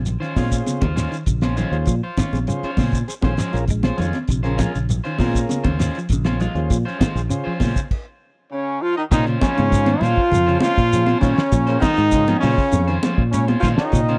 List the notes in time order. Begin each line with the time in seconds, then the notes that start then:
Already playing: A#1 C#3
0.06 closed hi-hat, low conga, shekere
0.20 D#3 C#4 F4 C5, snare, closed hi-hat
0.36 A#2 G#3 C#4 F4 G#4 C5, muted clean electric guitar stroke, kick, open hi-hat, high conga, low conga, shekere
0.52 kick, closed hi-hat, shekere
0.67 C#3, snare, closed hi-hat, high conga, shekere
0.81 D#2 C#3 F4 C5, kick, closed hi-hat, high conga
0.96 G#3 C#4 F4 C5, snare, closed hi-hat, shekere
1.11 D#3, snare, closed hi-hat, shekere
1.26 A#1 C#3, kick, closed hi-hat, shekere
1.41 C#4 F4 C5, snare, closed hi-hat, high conga
1.56 D#3 G#3 C#4 F4 C5, closed hi-hat, low conga, shekere
1.72 D#2 C#4 F4 G#4 C5, closed hi-hat
1.86 A#2 F3, kick, closed hi-hat, shekere
2.03 F4 C5, muted clean electric guitar stroke
2.17 D#3 C#4 F4, kick, snare, closed hi-hat, high conga, shekere
2.33 A#1 G#4 C5, closed hi-hat, high conga, shekere
2.47 C#3 C#4 F4 G#4 C5, closed hi-hat, low conga, shekere
2.63 C#4 F4 C5, muted fingered electric bass stroke, snare
2.77 A#2 C#3 G#3 C#4 F4 C5, kick, open hi-hat, high conga, low conga, shekere
2.92 kick, closed hi-hat, shekere
3.08 G#4 C5, snare, closed hi-hat, shekere
3.21 A#1 D#3 C#4 F4 G#4 C5, muted clean electric guitar stroke, kick, snare, high conga
3.37 F3 G#3 C#4 C5, snare, closed hi-hat, shekere
3.52 A#1 C#4 F4 G#4 A#4, snare, closed hi-hat, shekere
3.68 G#3, kick, closed hi-hat, shekere
3.83 C#4 F4 G#4 C5, muted clean electric guitar stroke, snare, closed hi-hat, high conga
3.97 F2 D#3 G#3 C#4 F4, closed hi-hat, low conga
4.01 shekere
4.13 snare, closed hi-hat, high conga
4.28 A#1 C3, kick, closed hi-hat, shekere
4.43 C#3 C#4 F4 G#4 A#4 C5, snare, closed hi-hat
4.58 F3 G#3 C#4 F4, kick, snare, closed hi-hat, high conga, shekere
4.74 A#1 C#3, snare, shekere
4.89 closed hi-hat, low conga, shekere
5.04 D#3 C#4 F4 C5, closed hi-hat
5.18 A#2 G#3 C#4 F4 G#4 A#4 C5, kick, open hi-hat, high conga, low conga, shekere
5.35 kick, closed hi-hat, shekere
5.49 C#3, snare, closed hi-hat, high conga, shekere
5.64 D#2 C#3 C#4 F4 C5, kick, closed hi-hat, high conga
5.79 G#3 C#4 F4 C5, snare, closed hi-hat, shekere
5.95 F3, closed hi-hat, shekere
6.09 A#1 C#3, kick, closed hi-hat, shekere
6.24 C#4 F4 C5, snare, closed hi-hat, high conga
6.40 F3 G#3 F4, muted clean electric guitar stroke, closed hi-hat, low conga, shekere
6.55 D#2 C#4 F4 G#4 C5, closed hi-hat
6.70 A#2 F3, kick, closed hi-hat, shekere
6.85 C#4 F4 C5, snare
6.99 D#3 G#3 F4 C5, muted fingered electric bass stroke, kick, snare, closed hi-hat, high conga, shekere
7.15 A#1 G#4 C5, closed hi-hat, shekere
7.29 C#3 C#4 F4 G#4 C5, closed hi-hat, shekere
7.44 F3 C#4 F4 C5, muted fingered electric bass stroke
7.59 A#2 C#3 G#3 C#4 F4 C5, kick, open hi-hat, high conga, low conga, shekere
7.76 kick, closed hi-hat, shekere
7.91 kick, crash
8.51 C#3 C#4 C#5
8.81 F3 F4 F5
8.96 D#3 D#4 D#5
9.11 A#2 C3 D#3 G#3 C#4 D#4 F4 C5 D#5, kick, snare, closed hi-hat, shekere
9.26 C#3 C#4 F4 C5, closed hi-hat
9.41 C#3 F3 G#3 C#4 F4 C5 C#5, kick, snare, closed hi-hat, high conga, shekere
9.57 G#2 C#3 C#4 F4 G#4 C5, closed hi-hat, high conga
9.72 kick, snare, closed hi-hat, shekere
9.86 D#3 C#4 F4 C5, closed hi-hat, high conga
10.01 A#2 F3 G#3 C#4 F4 C5 F5, closed hi-hat, low conga, shekere
10.17 kick
10.31 F2 C#3 G#4 C5, closed hi-hat, low conga, shekere
10.47 C#3 C#4 F4 G#4 C5, closed hi-hat
10.61 F3 G#3 C#4 F4 F5, snare, closed hi-hat, high conga, shekere
10.78 A#2, kick, closed hi-hat
10.92 F3 C#4 F4 G#4 C5, snare, closed hi-hat, shekere
11.06 C#4 F4 C5, closed hi-hat, high conga
11.20 A#2 C#3 D#3 G#3 C#4 F4 G#4 C5 C#5, kick, closed hi-hat, low conga, shekere
11.38 muted fingered electric bass stroke, snare, closed hi-hat
11.52 A#2 F3, kick, closed hi-hat, shekere
11.67 C#4 F4 G#4 A#4 C5, muted clean electric guitar stroke, snare, closed hi-hat
11.80 D#3 G#3 D#4 F4 C5, muted clean electric guitar stroke, kick, snare, closed hi-hat, high conga, low conga
11.84 D#3 D#5, shekere
11.97 G#2, snare, closed hi-hat
12.11 C#3 C#4 F4 G#4 C5, kick, snare, closed hi-hat, shekere
12.27 F3 C#4 F4, snare, closed hi-hat, high conga
12.40 A#2 C#3 G#3 C#4 F4 G#4 C5 C#5, open hi-hat, low conga, shekere
12.44 C#5
12.58 kick
12.72 F2, closed hi-hat, high conga, low conga, shekere
12.88 D#3 C#4 F4 C5, closed hi-hat
13.03 F3 G#3 C#4 F4 C5, closed hi-hat, high conga, shekere
13.18 A#2, kick
13.31 C#3 G#3 C#4 C#5, closed hi-hat, shekere
13.48 C#4 F4 C5, closed hi-hat, high conga
13.60 A#2 F3 G#3 C#4 F4, kick, snare, closed hi-hat, low conga
13.64 D#3 F4 C5 F5, shekere
13.76 D#3 C#4 D#4 F4 G#4 C#5 D#5, muted fingered electric bass stroke, snare
13.92 A#2 C3, kick, closed hi-hat, shekere
14.09 C#3 C#4 F4 C5, closed hi-hat